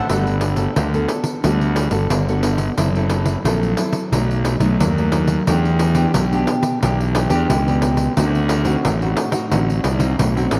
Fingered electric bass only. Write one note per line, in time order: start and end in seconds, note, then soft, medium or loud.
0.09 0.66 G1 medium
0.77 1.05 D2 medium
1.44 1.87 D2 medium
1.91 2.06 G1 medium
2.11 2.68 G1 medium
2.78 3.35 F#1 medium
3.44 3.73 A#1 medium
4.12 4.55 B1 medium
4.60 4.76 B1 medium
4.80 5.37 D#2 medium
5.48 6.05 E2 medium
6.15 6.44 B1 medium
6.83 7.25 B1 medium
7.30 7.45 E2 medium
7.50 8.07 C#2 medium
8.17 8.74 D2 medium
8.85 9.13 A1 loud
9.52 9.81 A1 medium
9.84 10.15 C2 medium
10.19 10.50 B1 medium
10.52 10.60 A1 medium